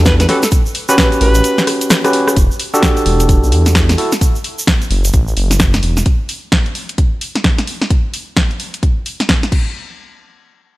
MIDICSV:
0, 0, Header, 1, 5, 480
1, 0, Start_track
1, 0, Tempo, 461538
1, 539, Time_signature, 4, 2, 24, 8
1, 11203, End_track
2, 0, Start_track
2, 0, Title_t, "Alto saxophone"
2, 0, Program_c, 0, 65
2, 60, Note_on_c, 0, 71, 93
2, 154, Note_off_c, 0, 71, 0
2, 209, Note_on_c, 0, 71, 80
2, 267, Note_off_c, 0, 71, 0
2, 300, Note_on_c, 0, 69, 89
2, 394, Note_off_c, 0, 69, 0
2, 452, Note_on_c, 0, 69, 79
2, 509, Note_off_c, 0, 69, 0
2, 929, Note_on_c, 0, 71, 89
2, 987, Note_off_c, 0, 71, 0
2, 1022, Note_on_c, 0, 71, 82
2, 1115, Note_off_c, 0, 71, 0
2, 1261, Note_on_c, 0, 71, 99
2, 1740, Note_off_c, 0, 71, 0
2, 11203, End_track
3, 0, Start_track
3, 0, Title_t, "Tine electric piano"
3, 0, Program_c, 1, 4
3, 0, Note_on_c, 1, 62, 101
3, 0, Note_on_c, 1, 66, 90
3, 0, Note_on_c, 1, 67, 92
3, 0, Note_on_c, 1, 69, 110
3, 277, Note_off_c, 1, 62, 0
3, 277, Note_off_c, 1, 66, 0
3, 277, Note_off_c, 1, 67, 0
3, 277, Note_off_c, 1, 69, 0
3, 298, Note_on_c, 1, 61, 82
3, 298, Note_on_c, 1, 66, 70
3, 298, Note_on_c, 1, 67, 69
3, 298, Note_on_c, 1, 71, 91
3, 433, Note_off_c, 1, 61, 0
3, 433, Note_off_c, 1, 66, 0
3, 433, Note_off_c, 1, 67, 0
3, 433, Note_off_c, 1, 71, 0
3, 924, Note_on_c, 1, 67, 88
3, 925, Note_on_c, 1, 61, 99
3, 925, Note_on_c, 1, 66, 89
3, 925, Note_on_c, 1, 71, 110
3, 2096, Note_off_c, 1, 61, 0
3, 2096, Note_off_c, 1, 66, 0
3, 2096, Note_off_c, 1, 67, 0
3, 2096, Note_off_c, 1, 71, 0
3, 2126, Note_on_c, 1, 61, 80
3, 2126, Note_on_c, 1, 67, 69
3, 2127, Note_on_c, 1, 66, 71
3, 2127, Note_on_c, 1, 71, 89
3, 2448, Note_off_c, 1, 61, 0
3, 2448, Note_off_c, 1, 66, 0
3, 2448, Note_off_c, 1, 67, 0
3, 2448, Note_off_c, 1, 71, 0
3, 2846, Note_on_c, 1, 69, 105
3, 2847, Note_on_c, 1, 62, 93
3, 2847, Note_on_c, 1, 66, 90
3, 2847, Note_on_c, 1, 67, 88
3, 4117, Note_off_c, 1, 62, 0
3, 4117, Note_off_c, 1, 66, 0
3, 4117, Note_off_c, 1, 67, 0
3, 4117, Note_off_c, 1, 69, 0
3, 4140, Note_on_c, 1, 64, 74
3, 4140, Note_on_c, 1, 69, 84
3, 4141, Note_on_c, 1, 66, 70
3, 4274, Note_off_c, 1, 64, 0
3, 4274, Note_off_c, 1, 66, 0
3, 4274, Note_off_c, 1, 69, 0
3, 11203, End_track
4, 0, Start_track
4, 0, Title_t, "Detuned saw bass"
4, 0, Program_c, 2, 39
4, 0, Note_on_c, 2, 40, 93
4, 274, Note_off_c, 2, 40, 0
4, 1259, Note_on_c, 2, 33, 95
4, 1468, Note_off_c, 2, 33, 0
4, 2460, Note_on_c, 2, 28, 97
4, 2582, Note_off_c, 2, 28, 0
4, 3180, Note_on_c, 2, 28, 94
4, 3527, Note_off_c, 2, 28, 0
4, 3569, Note_on_c, 2, 35, 91
4, 3662, Note_on_c, 2, 40, 90
4, 3678, Note_off_c, 2, 35, 0
4, 4115, Note_off_c, 2, 40, 0
4, 5101, Note_on_c, 2, 30, 92
4, 5309, Note_off_c, 2, 30, 0
4, 5342, Note_on_c, 2, 33, 97
4, 5549, Note_off_c, 2, 33, 0
4, 5582, Note_on_c, 2, 30, 88
4, 6035, Note_off_c, 2, 30, 0
4, 6061, Note_on_c, 2, 28, 99
4, 6269, Note_off_c, 2, 28, 0
4, 11203, End_track
5, 0, Start_track
5, 0, Title_t, "Drums"
5, 58, Note_on_c, 9, 82, 63
5, 59, Note_on_c, 9, 36, 114
5, 60, Note_on_c, 9, 38, 113
5, 162, Note_off_c, 9, 82, 0
5, 163, Note_off_c, 9, 36, 0
5, 164, Note_off_c, 9, 38, 0
5, 207, Note_on_c, 9, 40, 68
5, 207, Note_on_c, 9, 42, 59
5, 213, Note_on_c, 9, 82, 36
5, 299, Note_on_c, 9, 38, 59
5, 299, Note_on_c, 9, 46, 103
5, 311, Note_off_c, 9, 40, 0
5, 311, Note_off_c, 9, 42, 0
5, 317, Note_off_c, 9, 82, 0
5, 403, Note_off_c, 9, 38, 0
5, 403, Note_off_c, 9, 46, 0
5, 444, Note_on_c, 9, 82, 83
5, 447, Note_on_c, 9, 40, 70
5, 535, Note_off_c, 9, 82, 0
5, 535, Note_on_c, 9, 82, 66
5, 539, Note_on_c, 9, 36, 117
5, 539, Note_on_c, 9, 42, 68
5, 551, Note_off_c, 9, 40, 0
5, 639, Note_off_c, 9, 82, 0
5, 643, Note_off_c, 9, 36, 0
5, 643, Note_off_c, 9, 42, 0
5, 684, Note_on_c, 9, 82, 40
5, 778, Note_on_c, 9, 46, 116
5, 788, Note_off_c, 9, 82, 0
5, 882, Note_off_c, 9, 46, 0
5, 923, Note_on_c, 9, 82, 72
5, 1019, Note_on_c, 9, 36, 125
5, 1019, Note_on_c, 9, 38, 116
5, 1022, Note_off_c, 9, 82, 0
5, 1022, Note_on_c, 9, 82, 61
5, 1123, Note_off_c, 9, 36, 0
5, 1123, Note_off_c, 9, 38, 0
5, 1126, Note_off_c, 9, 82, 0
5, 1166, Note_on_c, 9, 42, 39
5, 1173, Note_on_c, 9, 82, 38
5, 1258, Note_on_c, 9, 46, 99
5, 1270, Note_off_c, 9, 42, 0
5, 1277, Note_off_c, 9, 82, 0
5, 1362, Note_off_c, 9, 46, 0
5, 1397, Note_on_c, 9, 82, 78
5, 1406, Note_on_c, 9, 42, 72
5, 1498, Note_off_c, 9, 42, 0
5, 1498, Note_on_c, 9, 42, 75
5, 1501, Note_off_c, 9, 82, 0
5, 1502, Note_on_c, 9, 82, 60
5, 1602, Note_off_c, 9, 42, 0
5, 1606, Note_off_c, 9, 82, 0
5, 1644, Note_on_c, 9, 82, 41
5, 1646, Note_on_c, 9, 38, 61
5, 1739, Note_on_c, 9, 37, 64
5, 1739, Note_on_c, 9, 46, 120
5, 1748, Note_off_c, 9, 82, 0
5, 1750, Note_off_c, 9, 38, 0
5, 1843, Note_off_c, 9, 37, 0
5, 1843, Note_off_c, 9, 46, 0
5, 1885, Note_on_c, 9, 82, 72
5, 1886, Note_on_c, 9, 42, 71
5, 1976, Note_off_c, 9, 82, 0
5, 1976, Note_on_c, 9, 82, 68
5, 1980, Note_on_c, 9, 37, 77
5, 1980, Note_on_c, 9, 38, 113
5, 1990, Note_off_c, 9, 42, 0
5, 2080, Note_off_c, 9, 82, 0
5, 2084, Note_off_c, 9, 37, 0
5, 2084, Note_off_c, 9, 38, 0
5, 2127, Note_on_c, 9, 37, 75
5, 2127, Note_on_c, 9, 42, 57
5, 2130, Note_on_c, 9, 82, 39
5, 2219, Note_on_c, 9, 46, 106
5, 2231, Note_off_c, 9, 37, 0
5, 2231, Note_off_c, 9, 42, 0
5, 2234, Note_off_c, 9, 82, 0
5, 2323, Note_off_c, 9, 46, 0
5, 2366, Note_on_c, 9, 37, 95
5, 2373, Note_on_c, 9, 82, 82
5, 2459, Note_on_c, 9, 42, 63
5, 2460, Note_on_c, 9, 36, 114
5, 2468, Note_off_c, 9, 82, 0
5, 2468, Note_on_c, 9, 82, 58
5, 2470, Note_off_c, 9, 37, 0
5, 2563, Note_off_c, 9, 42, 0
5, 2564, Note_off_c, 9, 36, 0
5, 2572, Note_off_c, 9, 82, 0
5, 2614, Note_on_c, 9, 82, 38
5, 2699, Note_on_c, 9, 46, 113
5, 2718, Note_off_c, 9, 82, 0
5, 2803, Note_off_c, 9, 46, 0
5, 2851, Note_on_c, 9, 82, 76
5, 2938, Note_on_c, 9, 38, 116
5, 2941, Note_on_c, 9, 36, 116
5, 2945, Note_off_c, 9, 82, 0
5, 2945, Note_on_c, 9, 82, 65
5, 3042, Note_off_c, 9, 38, 0
5, 3045, Note_off_c, 9, 36, 0
5, 3049, Note_off_c, 9, 82, 0
5, 3087, Note_on_c, 9, 82, 37
5, 3088, Note_on_c, 9, 42, 35
5, 3180, Note_on_c, 9, 46, 97
5, 3191, Note_off_c, 9, 82, 0
5, 3192, Note_off_c, 9, 42, 0
5, 3284, Note_off_c, 9, 46, 0
5, 3328, Note_on_c, 9, 82, 73
5, 3329, Note_on_c, 9, 42, 67
5, 3421, Note_off_c, 9, 42, 0
5, 3421, Note_on_c, 9, 36, 116
5, 3421, Note_on_c, 9, 42, 68
5, 3425, Note_off_c, 9, 82, 0
5, 3425, Note_on_c, 9, 82, 62
5, 3525, Note_off_c, 9, 36, 0
5, 3525, Note_off_c, 9, 42, 0
5, 3529, Note_off_c, 9, 82, 0
5, 3573, Note_on_c, 9, 82, 42
5, 3661, Note_on_c, 9, 46, 111
5, 3677, Note_off_c, 9, 82, 0
5, 3765, Note_off_c, 9, 46, 0
5, 3807, Note_on_c, 9, 40, 68
5, 3807, Note_on_c, 9, 42, 65
5, 3809, Note_on_c, 9, 82, 83
5, 3900, Note_on_c, 9, 38, 112
5, 3901, Note_on_c, 9, 36, 116
5, 3910, Note_off_c, 9, 82, 0
5, 3910, Note_on_c, 9, 82, 62
5, 3911, Note_off_c, 9, 40, 0
5, 3911, Note_off_c, 9, 42, 0
5, 4004, Note_off_c, 9, 38, 0
5, 4005, Note_off_c, 9, 36, 0
5, 4014, Note_off_c, 9, 82, 0
5, 4049, Note_on_c, 9, 40, 70
5, 4049, Note_on_c, 9, 42, 53
5, 4052, Note_on_c, 9, 82, 38
5, 4142, Note_on_c, 9, 46, 97
5, 4153, Note_off_c, 9, 40, 0
5, 4153, Note_off_c, 9, 42, 0
5, 4156, Note_off_c, 9, 82, 0
5, 4246, Note_off_c, 9, 46, 0
5, 4285, Note_on_c, 9, 82, 76
5, 4288, Note_on_c, 9, 40, 70
5, 4381, Note_on_c, 9, 36, 119
5, 4382, Note_on_c, 9, 42, 61
5, 4387, Note_off_c, 9, 82, 0
5, 4387, Note_on_c, 9, 82, 74
5, 4392, Note_off_c, 9, 40, 0
5, 4485, Note_off_c, 9, 36, 0
5, 4486, Note_off_c, 9, 42, 0
5, 4491, Note_off_c, 9, 82, 0
5, 4529, Note_on_c, 9, 82, 39
5, 4621, Note_on_c, 9, 46, 105
5, 4633, Note_off_c, 9, 82, 0
5, 4725, Note_off_c, 9, 46, 0
5, 4770, Note_on_c, 9, 82, 80
5, 4861, Note_on_c, 9, 36, 127
5, 4861, Note_on_c, 9, 38, 120
5, 4866, Note_off_c, 9, 82, 0
5, 4866, Note_on_c, 9, 82, 64
5, 4965, Note_off_c, 9, 36, 0
5, 4965, Note_off_c, 9, 38, 0
5, 4970, Note_off_c, 9, 82, 0
5, 5009, Note_on_c, 9, 42, 35
5, 5009, Note_on_c, 9, 82, 38
5, 5102, Note_on_c, 9, 46, 94
5, 5113, Note_off_c, 9, 42, 0
5, 5113, Note_off_c, 9, 82, 0
5, 5206, Note_off_c, 9, 46, 0
5, 5247, Note_on_c, 9, 82, 85
5, 5249, Note_on_c, 9, 42, 63
5, 5336, Note_off_c, 9, 82, 0
5, 5336, Note_on_c, 9, 82, 64
5, 5342, Note_off_c, 9, 42, 0
5, 5342, Note_on_c, 9, 36, 118
5, 5342, Note_on_c, 9, 42, 66
5, 5440, Note_off_c, 9, 82, 0
5, 5446, Note_off_c, 9, 36, 0
5, 5446, Note_off_c, 9, 42, 0
5, 5488, Note_on_c, 9, 82, 37
5, 5581, Note_on_c, 9, 46, 104
5, 5592, Note_off_c, 9, 82, 0
5, 5685, Note_off_c, 9, 46, 0
5, 5728, Note_on_c, 9, 40, 69
5, 5728, Note_on_c, 9, 42, 61
5, 5734, Note_on_c, 9, 82, 83
5, 5819, Note_off_c, 9, 82, 0
5, 5819, Note_on_c, 9, 82, 70
5, 5821, Note_on_c, 9, 36, 117
5, 5821, Note_on_c, 9, 38, 116
5, 5832, Note_off_c, 9, 40, 0
5, 5832, Note_off_c, 9, 42, 0
5, 5923, Note_off_c, 9, 82, 0
5, 5925, Note_off_c, 9, 36, 0
5, 5925, Note_off_c, 9, 38, 0
5, 5966, Note_on_c, 9, 82, 38
5, 5969, Note_on_c, 9, 40, 68
5, 5969, Note_on_c, 9, 42, 51
5, 6061, Note_on_c, 9, 46, 91
5, 6070, Note_off_c, 9, 82, 0
5, 6073, Note_off_c, 9, 40, 0
5, 6073, Note_off_c, 9, 42, 0
5, 6165, Note_off_c, 9, 46, 0
5, 6207, Note_on_c, 9, 40, 71
5, 6210, Note_on_c, 9, 82, 81
5, 6300, Note_on_c, 9, 42, 61
5, 6301, Note_on_c, 9, 36, 118
5, 6311, Note_off_c, 9, 40, 0
5, 6314, Note_off_c, 9, 82, 0
5, 6404, Note_off_c, 9, 42, 0
5, 6405, Note_off_c, 9, 36, 0
5, 6540, Note_on_c, 9, 46, 101
5, 6644, Note_off_c, 9, 46, 0
5, 6781, Note_on_c, 9, 36, 124
5, 6781, Note_on_c, 9, 38, 120
5, 6885, Note_off_c, 9, 36, 0
5, 6885, Note_off_c, 9, 38, 0
5, 6927, Note_on_c, 9, 42, 33
5, 7021, Note_on_c, 9, 46, 86
5, 7031, Note_off_c, 9, 42, 0
5, 7125, Note_off_c, 9, 46, 0
5, 7168, Note_on_c, 9, 42, 62
5, 7261, Note_off_c, 9, 42, 0
5, 7261, Note_on_c, 9, 36, 119
5, 7261, Note_on_c, 9, 42, 66
5, 7365, Note_off_c, 9, 36, 0
5, 7365, Note_off_c, 9, 42, 0
5, 7501, Note_on_c, 9, 46, 102
5, 7605, Note_off_c, 9, 46, 0
5, 7649, Note_on_c, 9, 40, 65
5, 7649, Note_on_c, 9, 42, 61
5, 7740, Note_on_c, 9, 38, 114
5, 7741, Note_on_c, 9, 36, 118
5, 7753, Note_off_c, 9, 40, 0
5, 7753, Note_off_c, 9, 42, 0
5, 7844, Note_off_c, 9, 38, 0
5, 7845, Note_off_c, 9, 36, 0
5, 7888, Note_on_c, 9, 40, 67
5, 7888, Note_on_c, 9, 42, 49
5, 7981, Note_on_c, 9, 46, 87
5, 7992, Note_off_c, 9, 40, 0
5, 7992, Note_off_c, 9, 42, 0
5, 8085, Note_off_c, 9, 46, 0
5, 8128, Note_on_c, 9, 40, 68
5, 8221, Note_on_c, 9, 36, 116
5, 8221, Note_on_c, 9, 42, 61
5, 8232, Note_off_c, 9, 40, 0
5, 8325, Note_off_c, 9, 36, 0
5, 8325, Note_off_c, 9, 42, 0
5, 8461, Note_on_c, 9, 46, 96
5, 8565, Note_off_c, 9, 46, 0
5, 8700, Note_on_c, 9, 38, 114
5, 8701, Note_on_c, 9, 36, 116
5, 8804, Note_off_c, 9, 38, 0
5, 8805, Note_off_c, 9, 36, 0
5, 8849, Note_on_c, 9, 42, 32
5, 8941, Note_on_c, 9, 46, 85
5, 8953, Note_off_c, 9, 42, 0
5, 9045, Note_off_c, 9, 46, 0
5, 9089, Note_on_c, 9, 42, 63
5, 9181, Note_on_c, 9, 36, 116
5, 9182, Note_off_c, 9, 42, 0
5, 9182, Note_on_c, 9, 42, 63
5, 9285, Note_off_c, 9, 36, 0
5, 9286, Note_off_c, 9, 42, 0
5, 9422, Note_on_c, 9, 46, 94
5, 9526, Note_off_c, 9, 46, 0
5, 9569, Note_on_c, 9, 40, 62
5, 9569, Note_on_c, 9, 42, 61
5, 9661, Note_on_c, 9, 36, 114
5, 9661, Note_on_c, 9, 38, 113
5, 9673, Note_off_c, 9, 40, 0
5, 9673, Note_off_c, 9, 42, 0
5, 9765, Note_off_c, 9, 36, 0
5, 9765, Note_off_c, 9, 38, 0
5, 9810, Note_on_c, 9, 40, 64
5, 9810, Note_on_c, 9, 42, 47
5, 9900, Note_on_c, 9, 36, 107
5, 9902, Note_on_c, 9, 49, 78
5, 9914, Note_off_c, 9, 40, 0
5, 9914, Note_off_c, 9, 42, 0
5, 10004, Note_off_c, 9, 36, 0
5, 10006, Note_off_c, 9, 49, 0
5, 11203, End_track
0, 0, End_of_file